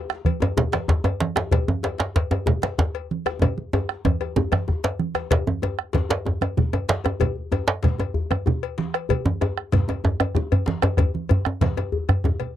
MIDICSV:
0, 0, Header, 1, 4, 480
1, 0, Start_track
1, 0, Tempo, 315292
1, 2323, Time_signature, 12, 3, 24, 8
1, 19127, End_track
2, 0, Start_track
2, 0, Title_t, "Bombo"
2, 151, Note_on_c, 9, 37, 77
2, 304, Note_off_c, 9, 37, 0
2, 377, Note_on_c, 9, 43, 112
2, 529, Note_off_c, 9, 43, 0
2, 1116, Note_on_c, 9, 37, 81
2, 1269, Note_off_c, 9, 37, 0
2, 1346, Note_on_c, 9, 43, 107
2, 1498, Note_off_c, 9, 43, 0
2, 2071, Note_on_c, 9, 37, 80
2, 2223, Note_off_c, 9, 37, 0
2, 2306, Note_on_c, 9, 43, 113
2, 2459, Note_off_c, 9, 43, 0
2, 3037, Note_on_c, 9, 37, 74
2, 3190, Note_off_c, 9, 37, 0
2, 3284, Note_on_c, 9, 37, 36
2, 3284, Note_on_c, 9, 43, 102
2, 3437, Note_off_c, 9, 37, 0
2, 3437, Note_off_c, 9, 43, 0
2, 4006, Note_on_c, 9, 37, 82
2, 4158, Note_off_c, 9, 37, 0
2, 4238, Note_on_c, 9, 43, 120
2, 4391, Note_off_c, 9, 43, 0
2, 4972, Note_on_c, 9, 37, 86
2, 5125, Note_off_c, 9, 37, 0
2, 5198, Note_on_c, 9, 43, 111
2, 5350, Note_off_c, 9, 43, 0
2, 5925, Note_on_c, 9, 37, 74
2, 6077, Note_off_c, 9, 37, 0
2, 6174, Note_on_c, 9, 43, 120
2, 6326, Note_off_c, 9, 43, 0
2, 6420, Note_on_c, 9, 37, 30
2, 6572, Note_off_c, 9, 37, 0
2, 6895, Note_on_c, 9, 37, 82
2, 7048, Note_off_c, 9, 37, 0
2, 7134, Note_on_c, 9, 37, 33
2, 7134, Note_on_c, 9, 43, 105
2, 7287, Note_off_c, 9, 37, 0
2, 7287, Note_off_c, 9, 43, 0
2, 7605, Note_on_c, 9, 37, 32
2, 7757, Note_off_c, 9, 37, 0
2, 7841, Note_on_c, 9, 37, 77
2, 7993, Note_off_c, 9, 37, 0
2, 8084, Note_on_c, 9, 43, 121
2, 8236, Note_off_c, 9, 43, 0
2, 8581, Note_on_c, 9, 37, 33
2, 8733, Note_off_c, 9, 37, 0
2, 8809, Note_on_c, 9, 37, 78
2, 8961, Note_off_c, 9, 37, 0
2, 9045, Note_on_c, 9, 43, 105
2, 9197, Note_off_c, 9, 43, 0
2, 9773, Note_on_c, 9, 37, 75
2, 9925, Note_off_c, 9, 37, 0
2, 10025, Note_on_c, 9, 37, 33
2, 10025, Note_on_c, 9, 43, 109
2, 10177, Note_off_c, 9, 37, 0
2, 10177, Note_off_c, 9, 43, 0
2, 10742, Note_on_c, 9, 37, 74
2, 10894, Note_off_c, 9, 37, 0
2, 10972, Note_on_c, 9, 43, 102
2, 11124, Note_off_c, 9, 43, 0
2, 11468, Note_on_c, 9, 37, 31
2, 11620, Note_off_c, 9, 37, 0
2, 11698, Note_on_c, 9, 37, 70
2, 11850, Note_off_c, 9, 37, 0
2, 11926, Note_on_c, 9, 43, 107
2, 12079, Note_off_c, 9, 43, 0
2, 12659, Note_on_c, 9, 37, 82
2, 12811, Note_off_c, 9, 37, 0
2, 12892, Note_on_c, 9, 37, 33
2, 12892, Note_on_c, 9, 43, 104
2, 13044, Note_off_c, 9, 37, 0
2, 13044, Note_off_c, 9, 43, 0
2, 13613, Note_on_c, 9, 37, 82
2, 13765, Note_off_c, 9, 37, 0
2, 13850, Note_on_c, 9, 43, 116
2, 14002, Note_off_c, 9, 43, 0
2, 14328, Note_on_c, 9, 37, 35
2, 14480, Note_off_c, 9, 37, 0
2, 14577, Note_on_c, 9, 37, 76
2, 14729, Note_off_c, 9, 37, 0
2, 14805, Note_on_c, 9, 43, 106
2, 14957, Note_off_c, 9, 43, 0
2, 15527, Note_on_c, 9, 37, 89
2, 15679, Note_off_c, 9, 37, 0
2, 15752, Note_on_c, 9, 37, 37
2, 15752, Note_on_c, 9, 43, 120
2, 15904, Note_off_c, 9, 37, 0
2, 15904, Note_off_c, 9, 43, 0
2, 16235, Note_on_c, 9, 37, 36
2, 16387, Note_off_c, 9, 37, 0
2, 16478, Note_on_c, 9, 37, 85
2, 16631, Note_off_c, 9, 37, 0
2, 16705, Note_on_c, 9, 37, 36
2, 16705, Note_on_c, 9, 43, 122
2, 16857, Note_off_c, 9, 37, 0
2, 16857, Note_off_c, 9, 43, 0
2, 17434, Note_on_c, 9, 37, 85
2, 17586, Note_off_c, 9, 37, 0
2, 17676, Note_on_c, 9, 43, 114
2, 17828, Note_off_c, 9, 43, 0
2, 18409, Note_on_c, 9, 37, 87
2, 18561, Note_off_c, 9, 37, 0
2, 18637, Note_on_c, 9, 37, 32
2, 18637, Note_on_c, 9, 43, 106
2, 18789, Note_off_c, 9, 37, 0
2, 18789, Note_off_c, 9, 43, 0
2, 18880, Note_on_c, 9, 37, 33
2, 19032, Note_off_c, 9, 37, 0
2, 19127, End_track
3, 0, Start_track
3, 0, Title_t, "Djembe"
3, 150, Note_on_c, 9, 62, 62
3, 302, Note_off_c, 9, 62, 0
3, 382, Note_on_c, 9, 62, 28
3, 535, Note_off_c, 9, 62, 0
3, 615, Note_on_c, 9, 63, 67
3, 641, Note_off_c, 9, 63, 0
3, 641, Note_on_c, 9, 63, 105
3, 794, Note_off_c, 9, 63, 0
3, 867, Note_on_c, 9, 64, 85
3, 876, Note_on_c, 9, 62, 89
3, 1019, Note_off_c, 9, 64, 0
3, 1028, Note_off_c, 9, 62, 0
3, 1101, Note_on_c, 9, 62, 68
3, 1112, Note_off_c, 9, 62, 0
3, 1112, Note_on_c, 9, 62, 81
3, 1265, Note_off_c, 9, 62, 0
3, 1343, Note_on_c, 9, 62, 29
3, 1343, Note_on_c, 9, 63, 87
3, 1354, Note_off_c, 9, 62, 0
3, 1354, Note_on_c, 9, 62, 82
3, 1495, Note_off_c, 9, 63, 0
3, 1506, Note_off_c, 9, 62, 0
3, 1585, Note_on_c, 9, 62, 26
3, 1586, Note_on_c, 9, 63, 107
3, 1738, Note_off_c, 9, 62, 0
3, 1738, Note_off_c, 9, 63, 0
3, 1833, Note_on_c, 9, 62, 85
3, 1985, Note_off_c, 9, 62, 0
3, 2065, Note_on_c, 9, 62, 65
3, 2065, Note_on_c, 9, 63, 61
3, 2082, Note_off_c, 9, 62, 0
3, 2082, Note_on_c, 9, 62, 83
3, 2218, Note_off_c, 9, 63, 0
3, 2235, Note_off_c, 9, 62, 0
3, 2306, Note_on_c, 9, 64, 88
3, 2321, Note_on_c, 9, 62, 83
3, 2458, Note_off_c, 9, 64, 0
3, 2473, Note_off_c, 9, 62, 0
3, 2547, Note_on_c, 9, 62, 28
3, 2562, Note_on_c, 9, 63, 98
3, 2700, Note_off_c, 9, 62, 0
3, 2714, Note_off_c, 9, 63, 0
3, 2788, Note_on_c, 9, 63, 77
3, 2800, Note_on_c, 9, 62, 78
3, 2940, Note_off_c, 9, 63, 0
3, 2952, Note_off_c, 9, 62, 0
3, 3020, Note_on_c, 9, 62, 61
3, 3044, Note_off_c, 9, 62, 0
3, 3044, Note_on_c, 9, 62, 86
3, 3196, Note_off_c, 9, 62, 0
3, 3265, Note_on_c, 9, 62, 28
3, 3286, Note_off_c, 9, 62, 0
3, 3286, Note_on_c, 9, 62, 80
3, 3438, Note_off_c, 9, 62, 0
3, 3514, Note_on_c, 9, 63, 64
3, 3518, Note_off_c, 9, 63, 0
3, 3518, Note_on_c, 9, 63, 97
3, 3670, Note_off_c, 9, 63, 0
3, 3746, Note_on_c, 9, 64, 77
3, 3759, Note_on_c, 9, 62, 87
3, 3898, Note_off_c, 9, 64, 0
3, 3911, Note_off_c, 9, 62, 0
3, 3989, Note_on_c, 9, 62, 60
3, 4006, Note_off_c, 9, 62, 0
3, 4006, Note_on_c, 9, 62, 81
3, 4159, Note_off_c, 9, 62, 0
3, 4242, Note_on_c, 9, 62, 27
3, 4242, Note_on_c, 9, 63, 80
3, 4246, Note_off_c, 9, 62, 0
3, 4246, Note_on_c, 9, 62, 89
3, 4394, Note_off_c, 9, 63, 0
3, 4398, Note_off_c, 9, 62, 0
3, 4491, Note_on_c, 9, 62, 25
3, 4643, Note_off_c, 9, 62, 0
3, 4961, Note_on_c, 9, 62, 60
3, 4961, Note_on_c, 9, 63, 57
3, 5113, Note_off_c, 9, 62, 0
3, 5113, Note_off_c, 9, 63, 0
3, 5204, Note_on_c, 9, 62, 24
3, 5204, Note_on_c, 9, 63, 109
3, 5204, Note_on_c, 9, 64, 73
3, 5356, Note_off_c, 9, 62, 0
3, 5356, Note_off_c, 9, 64, 0
3, 5357, Note_off_c, 9, 63, 0
3, 5446, Note_on_c, 9, 62, 25
3, 5598, Note_off_c, 9, 62, 0
3, 5683, Note_on_c, 9, 63, 98
3, 5685, Note_off_c, 9, 63, 0
3, 5685, Note_on_c, 9, 63, 78
3, 5837, Note_off_c, 9, 63, 0
3, 5928, Note_on_c, 9, 62, 52
3, 6080, Note_off_c, 9, 62, 0
3, 6165, Note_on_c, 9, 63, 100
3, 6317, Note_off_c, 9, 63, 0
3, 6408, Note_on_c, 9, 63, 57
3, 6560, Note_off_c, 9, 63, 0
3, 6641, Note_on_c, 9, 63, 101
3, 6649, Note_on_c, 9, 64, 75
3, 6793, Note_off_c, 9, 63, 0
3, 6801, Note_off_c, 9, 64, 0
3, 6887, Note_on_c, 9, 63, 108
3, 6891, Note_on_c, 9, 62, 53
3, 7040, Note_off_c, 9, 63, 0
3, 7044, Note_off_c, 9, 62, 0
3, 7122, Note_on_c, 9, 62, 23
3, 7122, Note_on_c, 9, 63, 82
3, 7274, Note_off_c, 9, 62, 0
3, 7274, Note_off_c, 9, 63, 0
3, 7371, Note_on_c, 9, 62, 104
3, 7523, Note_off_c, 9, 62, 0
3, 7610, Note_on_c, 9, 62, 21
3, 7762, Note_off_c, 9, 62, 0
3, 7835, Note_on_c, 9, 62, 54
3, 7835, Note_on_c, 9, 63, 57
3, 7987, Note_off_c, 9, 62, 0
3, 7987, Note_off_c, 9, 63, 0
3, 8085, Note_on_c, 9, 64, 73
3, 8094, Note_on_c, 9, 62, 107
3, 8237, Note_off_c, 9, 64, 0
3, 8246, Note_off_c, 9, 62, 0
3, 8334, Note_on_c, 9, 62, 23
3, 8334, Note_on_c, 9, 63, 86
3, 8486, Note_off_c, 9, 62, 0
3, 8486, Note_off_c, 9, 63, 0
3, 8559, Note_on_c, 9, 63, 74
3, 8574, Note_off_c, 9, 63, 0
3, 8574, Note_on_c, 9, 63, 84
3, 8726, Note_off_c, 9, 63, 0
3, 9031, Note_on_c, 9, 62, 84
3, 9059, Note_on_c, 9, 63, 76
3, 9183, Note_off_c, 9, 62, 0
3, 9211, Note_off_c, 9, 63, 0
3, 9276, Note_on_c, 9, 62, 23
3, 9276, Note_on_c, 9, 63, 59
3, 9296, Note_off_c, 9, 62, 0
3, 9296, Note_on_c, 9, 62, 107
3, 9429, Note_off_c, 9, 63, 0
3, 9448, Note_off_c, 9, 62, 0
3, 9524, Note_on_c, 9, 62, 23
3, 9524, Note_on_c, 9, 64, 76
3, 9536, Note_on_c, 9, 63, 91
3, 9676, Note_off_c, 9, 62, 0
3, 9676, Note_off_c, 9, 64, 0
3, 9688, Note_off_c, 9, 63, 0
3, 9773, Note_on_c, 9, 63, 83
3, 9925, Note_off_c, 9, 63, 0
3, 10007, Note_on_c, 9, 62, 24
3, 10007, Note_on_c, 9, 63, 83
3, 10159, Note_off_c, 9, 62, 0
3, 10159, Note_off_c, 9, 63, 0
3, 10251, Note_on_c, 9, 63, 86
3, 10403, Note_off_c, 9, 63, 0
3, 10485, Note_on_c, 9, 62, 80
3, 10493, Note_off_c, 9, 62, 0
3, 10493, Note_on_c, 9, 62, 108
3, 10645, Note_off_c, 9, 62, 0
3, 10720, Note_on_c, 9, 63, 64
3, 10743, Note_off_c, 9, 63, 0
3, 10743, Note_on_c, 9, 63, 88
3, 10895, Note_off_c, 9, 63, 0
3, 10959, Note_on_c, 9, 64, 81
3, 10979, Note_on_c, 9, 63, 84
3, 11112, Note_off_c, 9, 64, 0
3, 11131, Note_off_c, 9, 63, 0
3, 11199, Note_on_c, 9, 62, 26
3, 11351, Note_off_c, 9, 62, 0
3, 11443, Note_on_c, 9, 63, 84
3, 11449, Note_off_c, 9, 63, 0
3, 11449, Note_on_c, 9, 63, 80
3, 11601, Note_off_c, 9, 63, 0
3, 11686, Note_on_c, 9, 62, 119
3, 11838, Note_off_c, 9, 62, 0
3, 11914, Note_on_c, 9, 62, 81
3, 11932, Note_on_c, 9, 63, 79
3, 12066, Note_off_c, 9, 62, 0
3, 12084, Note_off_c, 9, 63, 0
3, 12156, Note_on_c, 9, 62, 25
3, 12156, Note_on_c, 9, 63, 62
3, 12171, Note_off_c, 9, 63, 0
3, 12171, Note_on_c, 9, 63, 81
3, 12308, Note_off_c, 9, 62, 0
3, 12324, Note_off_c, 9, 63, 0
3, 12397, Note_on_c, 9, 62, 27
3, 12397, Note_on_c, 9, 64, 83
3, 12549, Note_off_c, 9, 62, 0
3, 12549, Note_off_c, 9, 64, 0
3, 12649, Note_on_c, 9, 63, 88
3, 12801, Note_off_c, 9, 63, 0
3, 12878, Note_on_c, 9, 62, 27
3, 12878, Note_on_c, 9, 63, 79
3, 13030, Note_off_c, 9, 62, 0
3, 13030, Note_off_c, 9, 63, 0
3, 13364, Note_on_c, 9, 62, 72
3, 13516, Note_off_c, 9, 62, 0
3, 13839, Note_on_c, 9, 64, 82
3, 13991, Note_off_c, 9, 64, 0
3, 14085, Note_on_c, 9, 62, 26
3, 14090, Note_on_c, 9, 63, 103
3, 14237, Note_off_c, 9, 62, 0
3, 14242, Note_off_c, 9, 63, 0
3, 14330, Note_on_c, 9, 63, 80
3, 14337, Note_off_c, 9, 63, 0
3, 14337, Note_on_c, 9, 63, 90
3, 14490, Note_off_c, 9, 63, 0
3, 14803, Note_on_c, 9, 62, 79
3, 14817, Note_on_c, 9, 64, 83
3, 14955, Note_off_c, 9, 62, 0
3, 14969, Note_off_c, 9, 64, 0
3, 15039, Note_on_c, 9, 62, 24
3, 15039, Note_on_c, 9, 63, 63
3, 15052, Note_off_c, 9, 63, 0
3, 15052, Note_on_c, 9, 63, 84
3, 15192, Note_off_c, 9, 62, 0
3, 15204, Note_off_c, 9, 63, 0
3, 15283, Note_on_c, 9, 62, 27
3, 15283, Note_on_c, 9, 64, 74
3, 15292, Note_on_c, 9, 63, 113
3, 15435, Note_off_c, 9, 62, 0
3, 15435, Note_off_c, 9, 64, 0
3, 15445, Note_off_c, 9, 63, 0
3, 15532, Note_on_c, 9, 63, 88
3, 15684, Note_off_c, 9, 63, 0
3, 15759, Note_on_c, 9, 62, 26
3, 15759, Note_on_c, 9, 63, 83
3, 15911, Note_off_c, 9, 62, 0
3, 15911, Note_off_c, 9, 63, 0
3, 16020, Note_on_c, 9, 64, 88
3, 16172, Note_off_c, 9, 64, 0
3, 16230, Note_on_c, 9, 62, 76
3, 16253, Note_on_c, 9, 63, 88
3, 16383, Note_off_c, 9, 62, 0
3, 16405, Note_off_c, 9, 63, 0
3, 16473, Note_on_c, 9, 63, 65
3, 16490, Note_off_c, 9, 63, 0
3, 16490, Note_on_c, 9, 63, 117
3, 16643, Note_off_c, 9, 63, 0
3, 16718, Note_on_c, 9, 62, 26
3, 16718, Note_on_c, 9, 64, 73
3, 16733, Note_on_c, 9, 63, 81
3, 16870, Note_off_c, 9, 62, 0
3, 16870, Note_off_c, 9, 64, 0
3, 16885, Note_off_c, 9, 63, 0
3, 16960, Note_on_c, 9, 62, 25
3, 17113, Note_off_c, 9, 62, 0
3, 17195, Note_on_c, 9, 62, 25
3, 17195, Note_on_c, 9, 63, 76
3, 17215, Note_on_c, 9, 64, 91
3, 17347, Note_off_c, 9, 62, 0
3, 17347, Note_off_c, 9, 63, 0
3, 17367, Note_off_c, 9, 64, 0
3, 17442, Note_on_c, 9, 62, 25
3, 17451, Note_on_c, 9, 63, 94
3, 17594, Note_off_c, 9, 62, 0
3, 17603, Note_off_c, 9, 63, 0
3, 17680, Note_on_c, 9, 62, 79
3, 17691, Note_on_c, 9, 63, 108
3, 17833, Note_off_c, 9, 62, 0
3, 17844, Note_off_c, 9, 63, 0
3, 17918, Note_on_c, 9, 63, 60
3, 17929, Note_off_c, 9, 63, 0
3, 17929, Note_on_c, 9, 63, 76
3, 18082, Note_off_c, 9, 63, 0
3, 18153, Note_on_c, 9, 64, 74
3, 18305, Note_off_c, 9, 64, 0
3, 18401, Note_on_c, 9, 62, 23
3, 18406, Note_on_c, 9, 64, 83
3, 18553, Note_off_c, 9, 62, 0
3, 18558, Note_off_c, 9, 64, 0
3, 18637, Note_on_c, 9, 62, 26
3, 18637, Note_on_c, 9, 63, 74
3, 18650, Note_off_c, 9, 63, 0
3, 18650, Note_on_c, 9, 63, 87
3, 18789, Note_off_c, 9, 62, 0
3, 18802, Note_off_c, 9, 63, 0
3, 18876, Note_on_c, 9, 62, 24
3, 19028, Note_off_c, 9, 62, 0
3, 19127, End_track
4, 0, Start_track
4, 0, Title_t, "Drums"
4, 392, Note_on_c, 9, 63, 73
4, 396, Note_on_c, 9, 56, 62
4, 544, Note_off_c, 9, 63, 0
4, 548, Note_off_c, 9, 56, 0
4, 638, Note_on_c, 9, 56, 57
4, 791, Note_off_c, 9, 56, 0
4, 878, Note_on_c, 9, 64, 80
4, 1030, Note_off_c, 9, 64, 0
4, 1120, Note_on_c, 9, 63, 55
4, 1123, Note_on_c, 9, 56, 53
4, 1273, Note_off_c, 9, 63, 0
4, 1275, Note_off_c, 9, 56, 0
4, 1598, Note_on_c, 9, 56, 57
4, 1750, Note_off_c, 9, 56, 0
4, 1848, Note_on_c, 9, 63, 77
4, 2001, Note_off_c, 9, 63, 0
4, 2319, Note_on_c, 9, 56, 76
4, 2329, Note_on_c, 9, 64, 71
4, 2471, Note_off_c, 9, 56, 0
4, 2481, Note_off_c, 9, 64, 0
4, 2569, Note_on_c, 9, 63, 61
4, 2721, Note_off_c, 9, 63, 0
4, 2810, Note_on_c, 9, 56, 54
4, 2963, Note_off_c, 9, 56, 0
4, 3290, Note_on_c, 9, 56, 56
4, 3442, Note_off_c, 9, 56, 0
4, 3527, Note_on_c, 9, 56, 49
4, 3679, Note_off_c, 9, 56, 0
4, 3767, Note_on_c, 9, 64, 85
4, 3919, Note_off_c, 9, 64, 0
4, 4006, Note_on_c, 9, 56, 49
4, 4010, Note_on_c, 9, 63, 59
4, 4159, Note_off_c, 9, 56, 0
4, 4163, Note_off_c, 9, 63, 0
4, 4488, Note_on_c, 9, 56, 52
4, 4640, Note_off_c, 9, 56, 0
4, 4736, Note_on_c, 9, 63, 67
4, 4889, Note_off_c, 9, 63, 0
4, 4961, Note_on_c, 9, 56, 53
4, 4975, Note_on_c, 9, 63, 25
4, 5114, Note_off_c, 9, 56, 0
4, 5127, Note_off_c, 9, 63, 0
4, 5207, Note_on_c, 9, 56, 64
4, 5218, Note_on_c, 9, 64, 62
4, 5359, Note_off_c, 9, 56, 0
4, 5370, Note_off_c, 9, 64, 0
4, 5445, Note_on_c, 9, 63, 60
4, 5598, Note_off_c, 9, 63, 0
4, 5689, Note_on_c, 9, 56, 50
4, 5691, Note_on_c, 9, 63, 22
4, 5841, Note_off_c, 9, 56, 0
4, 5843, Note_off_c, 9, 63, 0
4, 6163, Note_on_c, 9, 63, 71
4, 6167, Note_on_c, 9, 56, 52
4, 6315, Note_off_c, 9, 63, 0
4, 6319, Note_off_c, 9, 56, 0
4, 6405, Note_on_c, 9, 56, 48
4, 6557, Note_off_c, 9, 56, 0
4, 6645, Note_on_c, 9, 64, 83
4, 6797, Note_off_c, 9, 64, 0
4, 6878, Note_on_c, 9, 56, 52
4, 6883, Note_on_c, 9, 63, 56
4, 7030, Note_off_c, 9, 56, 0
4, 7035, Note_off_c, 9, 63, 0
4, 7124, Note_on_c, 9, 63, 22
4, 7276, Note_off_c, 9, 63, 0
4, 7366, Note_on_c, 9, 63, 23
4, 7368, Note_on_c, 9, 56, 50
4, 7518, Note_off_c, 9, 63, 0
4, 7520, Note_off_c, 9, 56, 0
4, 7604, Note_on_c, 9, 63, 74
4, 7756, Note_off_c, 9, 63, 0
4, 7843, Note_on_c, 9, 56, 54
4, 7995, Note_off_c, 9, 56, 0
4, 8081, Note_on_c, 9, 56, 68
4, 8082, Note_on_c, 9, 64, 71
4, 8233, Note_off_c, 9, 56, 0
4, 8234, Note_off_c, 9, 64, 0
4, 8327, Note_on_c, 9, 63, 68
4, 8480, Note_off_c, 9, 63, 0
4, 8571, Note_on_c, 9, 56, 57
4, 8576, Note_on_c, 9, 63, 24
4, 8723, Note_off_c, 9, 56, 0
4, 8729, Note_off_c, 9, 63, 0
4, 9050, Note_on_c, 9, 56, 51
4, 9051, Note_on_c, 9, 63, 79
4, 9202, Note_off_c, 9, 56, 0
4, 9203, Note_off_c, 9, 63, 0
4, 9291, Note_on_c, 9, 56, 49
4, 9443, Note_off_c, 9, 56, 0
4, 9762, Note_on_c, 9, 63, 59
4, 9772, Note_on_c, 9, 56, 49
4, 9914, Note_off_c, 9, 63, 0
4, 9924, Note_off_c, 9, 56, 0
4, 10013, Note_on_c, 9, 64, 83
4, 10165, Note_off_c, 9, 64, 0
4, 10249, Note_on_c, 9, 56, 53
4, 10401, Note_off_c, 9, 56, 0
4, 10499, Note_on_c, 9, 63, 72
4, 10651, Note_off_c, 9, 63, 0
4, 10727, Note_on_c, 9, 56, 53
4, 10879, Note_off_c, 9, 56, 0
4, 10971, Note_on_c, 9, 56, 67
4, 10975, Note_on_c, 9, 64, 66
4, 11123, Note_off_c, 9, 56, 0
4, 11128, Note_off_c, 9, 64, 0
4, 11455, Note_on_c, 9, 56, 56
4, 11466, Note_on_c, 9, 63, 25
4, 11607, Note_off_c, 9, 56, 0
4, 11618, Note_off_c, 9, 63, 0
4, 11939, Note_on_c, 9, 56, 52
4, 11944, Note_on_c, 9, 64, 74
4, 12091, Note_off_c, 9, 56, 0
4, 12097, Note_off_c, 9, 64, 0
4, 12182, Note_on_c, 9, 56, 53
4, 12334, Note_off_c, 9, 56, 0
4, 12645, Note_on_c, 9, 56, 51
4, 12659, Note_on_c, 9, 63, 58
4, 12797, Note_off_c, 9, 56, 0
4, 12811, Note_off_c, 9, 63, 0
4, 12898, Note_on_c, 9, 64, 82
4, 13050, Note_off_c, 9, 64, 0
4, 13139, Note_on_c, 9, 56, 53
4, 13291, Note_off_c, 9, 56, 0
4, 13376, Note_on_c, 9, 63, 76
4, 13528, Note_off_c, 9, 63, 0
4, 13620, Note_on_c, 9, 56, 54
4, 13772, Note_off_c, 9, 56, 0
4, 13854, Note_on_c, 9, 64, 70
4, 13855, Note_on_c, 9, 56, 67
4, 14007, Note_off_c, 9, 56, 0
4, 14007, Note_off_c, 9, 64, 0
4, 14095, Note_on_c, 9, 63, 64
4, 14247, Note_off_c, 9, 63, 0
4, 14332, Note_on_c, 9, 56, 54
4, 14334, Note_on_c, 9, 63, 24
4, 14484, Note_off_c, 9, 56, 0
4, 14486, Note_off_c, 9, 63, 0
4, 14816, Note_on_c, 9, 63, 76
4, 14816, Note_on_c, 9, 64, 78
4, 14817, Note_on_c, 9, 56, 57
4, 14968, Note_off_c, 9, 63, 0
4, 14968, Note_off_c, 9, 64, 0
4, 14970, Note_off_c, 9, 56, 0
4, 15067, Note_on_c, 9, 56, 53
4, 15219, Note_off_c, 9, 56, 0
4, 15531, Note_on_c, 9, 56, 58
4, 15683, Note_off_c, 9, 56, 0
4, 15777, Note_on_c, 9, 64, 82
4, 15929, Note_off_c, 9, 64, 0
4, 16013, Note_on_c, 9, 56, 62
4, 16166, Note_off_c, 9, 56, 0
4, 16258, Note_on_c, 9, 63, 78
4, 16410, Note_off_c, 9, 63, 0
4, 16478, Note_on_c, 9, 56, 67
4, 16631, Note_off_c, 9, 56, 0
4, 16715, Note_on_c, 9, 56, 74
4, 16725, Note_on_c, 9, 64, 66
4, 16867, Note_off_c, 9, 56, 0
4, 16877, Note_off_c, 9, 64, 0
4, 16972, Note_on_c, 9, 63, 63
4, 17124, Note_off_c, 9, 63, 0
4, 17193, Note_on_c, 9, 56, 64
4, 17211, Note_on_c, 9, 63, 23
4, 17345, Note_off_c, 9, 56, 0
4, 17363, Note_off_c, 9, 63, 0
4, 17446, Note_on_c, 9, 63, 26
4, 17598, Note_off_c, 9, 63, 0
4, 17681, Note_on_c, 9, 63, 74
4, 17681, Note_on_c, 9, 64, 75
4, 17691, Note_on_c, 9, 56, 63
4, 17833, Note_off_c, 9, 63, 0
4, 17833, Note_off_c, 9, 64, 0
4, 17844, Note_off_c, 9, 56, 0
4, 17923, Note_on_c, 9, 63, 26
4, 17925, Note_on_c, 9, 56, 56
4, 18075, Note_off_c, 9, 63, 0
4, 18077, Note_off_c, 9, 56, 0
4, 18402, Note_on_c, 9, 56, 51
4, 18407, Note_on_c, 9, 63, 62
4, 18554, Note_off_c, 9, 56, 0
4, 18560, Note_off_c, 9, 63, 0
4, 18651, Note_on_c, 9, 64, 48
4, 18803, Note_off_c, 9, 64, 0
4, 18872, Note_on_c, 9, 56, 50
4, 18883, Note_on_c, 9, 64, 50
4, 19024, Note_off_c, 9, 56, 0
4, 19035, Note_off_c, 9, 64, 0
4, 19127, End_track
0, 0, End_of_file